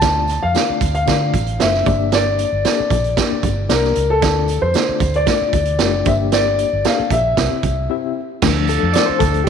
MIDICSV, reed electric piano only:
0, 0, Header, 1, 2, 480
1, 0, Start_track
1, 0, Key_signature, -1, "minor"
1, 0, Tempo, 524934
1, 28, Time_signature, 4, 2, 24, 8
1, 8679, End_track
2, 0, Start_track
2, 0, Title_t, "Reed electric piano"
2, 0, Program_c, 0, 4
2, 18, Note_on_c, 0, 57, 60
2, 19, Note_on_c, 0, 50, 49
2, 21, Note_on_c, 0, 62, 52
2, 23, Note_on_c, 0, 65, 54
2, 26, Note_on_c, 0, 74, 62
2, 291, Note_off_c, 0, 57, 0
2, 292, Note_off_c, 0, 62, 0
2, 293, Note_off_c, 0, 65, 0
2, 295, Note_off_c, 0, 74, 0
2, 496, Note_on_c, 0, 62, 56
2, 497, Note_on_c, 0, 57, 60
2, 498, Note_on_c, 0, 65, 60
2, 502, Note_on_c, 0, 74, 69
2, 707, Note_off_c, 0, 50, 0
2, 770, Note_off_c, 0, 57, 0
2, 770, Note_off_c, 0, 62, 0
2, 771, Note_off_c, 0, 65, 0
2, 772, Note_off_c, 0, 74, 0
2, 969, Note_on_c, 0, 57, 63
2, 970, Note_on_c, 0, 62, 59
2, 976, Note_on_c, 0, 65, 58
2, 976, Note_on_c, 0, 74, 76
2, 1246, Note_off_c, 0, 57, 0
2, 1246, Note_off_c, 0, 62, 0
2, 1249, Note_off_c, 0, 65, 0
2, 1249, Note_off_c, 0, 74, 0
2, 1452, Note_on_c, 0, 62, 57
2, 1457, Note_on_c, 0, 65, 60
2, 1457, Note_on_c, 0, 72, 75
2, 1460, Note_on_c, 0, 57, 65
2, 1689, Note_off_c, 0, 62, 0
2, 1697, Note_on_c, 0, 43, 53
2, 1700, Note_on_c, 0, 62, 62
2, 1701, Note_on_c, 0, 58, 67
2, 1701, Note_on_c, 0, 67, 61
2, 1703, Note_off_c, 0, 65, 0
2, 1703, Note_off_c, 0, 72, 0
2, 1703, Note_on_c, 0, 74, 72
2, 1704, Note_off_c, 0, 57, 0
2, 2280, Note_off_c, 0, 58, 0
2, 2280, Note_off_c, 0, 62, 0
2, 2280, Note_off_c, 0, 67, 0
2, 2281, Note_off_c, 0, 74, 0
2, 2386, Note_off_c, 0, 43, 0
2, 2427, Note_on_c, 0, 58, 63
2, 2428, Note_on_c, 0, 62, 59
2, 2428, Note_on_c, 0, 67, 59
2, 2430, Note_on_c, 0, 69, 72
2, 2695, Note_off_c, 0, 58, 0
2, 2695, Note_off_c, 0, 62, 0
2, 2695, Note_off_c, 0, 67, 0
2, 2696, Note_off_c, 0, 69, 0
2, 2905, Note_on_c, 0, 58, 82
2, 2907, Note_on_c, 0, 62, 74
2, 2909, Note_on_c, 0, 74, 92
2, 2911, Note_on_c, 0, 67, 71
2, 3174, Note_off_c, 0, 58, 0
2, 3175, Note_off_c, 0, 62, 0
2, 3176, Note_off_c, 0, 74, 0
2, 3177, Note_off_c, 0, 67, 0
2, 3377, Note_on_c, 0, 58, 70
2, 3377, Note_on_c, 0, 67, 59
2, 3378, Note_on_c, 0, 62, 63
2, 3378, Note_on_c, 0, 74, 73
2, 3650, Note_off_c, 0, 58, 0
2, 3650, Note_off_c, 0, 62, 0
2, 3650, Note_off_c, 0, 67, 0
2, 3650, Note_off_c, 0, 74, 0
2, 3850, Note_on_c, 0, 57, 57
2, 3851, Note_on_c, 0, 50, 51
2, 3853, Note_on_c, 0, 62, 59
2, 3856, Note_on_c, 0, 65, 52
2, 3857, Note_on_c, 0, 74, 71
2, 4126, Note_off_c, 0, 57, 0
2, 4128, Note_off_c, 0, 62, 0
2, 4129, Note_off_c, 0, 65, 0
2, 4130, Note_off_c, 0, 74, 0
2, 4328, Note_on_c, 0, 57, 64
2, 4332, Note_on_c, 0, 65, 64
2, 4332, Note_on_c, 0, 74, 67
2, 4337, Note_on_c, 0, 62, 61
2, 4542, Note_off_c, 0, 50, 0
2, 4605, Note_off_c, 0, 57, 0
2, 4607, Note_off_c, 0, 65, 0
2, 4607, Note_off_c, 0, 74, 0
2, 4610, Note_off_c, 0, 62, 0
2, 4810, Note_on_c, 0, 74, 74
2, 4813, Note_on_c, 0, 57, 67
2, 4814, Note_on_c, 0, 65, 60
2, 4816, Note_on_c, 0, 62, 63
2, 5086, Note_off_c, 0, 74, 0
2, 5088, Note_off_c, 0, 57, 0
2, 5088, Note_off_c, 0, 65, 0
2, 5089, Note_off_c, 0, 62, 0
2, 5294, Note_on_c, 0, 57, 87
2, 5295, Note_on_c, 0, 62, 75
2, 5297, Note_on_c, 0, 67, 91
2, 5298, Note_on_c, 0, 65, 76
2, 5532, Note_off_c, 0, 62, 0
2, 5532, Note_off_c, 0, 67, 0
2, 5540, Note_on_c, 0, 43, 55
2, 5540, Note_on_c, 0, 58, 71
2, 5541, Note_off_c, 0, 57, 0
2, 5543, Note_off_c, 0, 65, 0
2, 5543, Note_on_c, 0, 62, 64
2, 5543, Note_on_c, 0, 67, 66
2, 5543, Note_on_c, 0, 72, 62
2, 5601, Note_on_c, 0, 74, 75
2, 5603, Note_off_c, 0, 72, 0
2, 6120, Note_off_c, 0, 58, 0
2, 6121, Note_off_c, 0, 62, 0
2, 6121, Note_off_c, 0, 67, 0
2, 6150, Note_off_c, 0, 74, 0
2, 6227, Note_off_c, 0, 43, 0
2, 6269, Note_on_c, 0, 58, 65
2, 6272, Note_on_c, 0, 62, 60
2, 6273, Note_on_c, 0, 69, 73
2, 6275, Note_on_c, 0, 67, 59
2, 6536, Note_off_c, 0, 58, 0
2, 6537, Note_off_c, 0, 62, 0
2, 6538, Note_off_c, 0, 69, 0
2, 6539, Note_off_c, 0, 67, 0
2, 6747, Note_on_c, 0, 67, 59
2, 6748, Note_on_c, 0, 48, 57
2, 6749, Note_on_c, 0, 60, 66
2, 6751, Note_on_c, 0, 64, 60
2, 6753, Note_on_c, 0, 76, 78
2, 7015, Note_off_c, 0, 67, 0
2, 7016, Note_off_c, 0, 60, 0
2, 7016, Note_off_c, 0, 64, 0
2, 7018, Note_off_c, 0, 76, 0
2, 7220, Note_on_c, 0, 60, 76
2, 7223, Note_on_c, 0, 67, 71
2, 7227, Note_on_c, 0, 64, 75
2, 7230, Note_on_c, 0, 76, 88
2, 7431, Note_off_c, 0, 48, 0
2, 7491, Note_off_c, 0, 60, 0
2, 7492, Note_off_c, 0, 67, 0
2, 7494, Note_off_c, 0, 64, 0
2, 7496, Note_off_c, 0, 76, 0
2, 7704, Note_on_c, 0, 53, 52
2, 7706, Note_on_c, 0, 57, 43
2, 7710, Note_on_c, 0, 62, 55
2, 7947, Note_on_c, 0, 69, 87
2, 8169, Note_on_c, 0, 74, 96
2, 8194, Note_off_c, 0, 69, 0
2, 8285, Note_on_c, 0, 72, 94
2, 8301, Note_off_c, 0, 74, 0
2, 8405, Note_on_c, 0, 69, 90
2, 8419, Note_off_c, 0, 72, 0
2, 8633, Note_on_c, 0, 67, 94
2, 8662, Note_off_c, 0, 69, 0
2, 8679, Note_off_c, 0, 53, 0
2, 8679, Note_off_c, 0, 57, 0
2, 8679, Note_off_c, 0, 62, 0
2, 8679, Note_off_c, 0, 67, 0
2, 8679, End_track
0, 0, End_of_file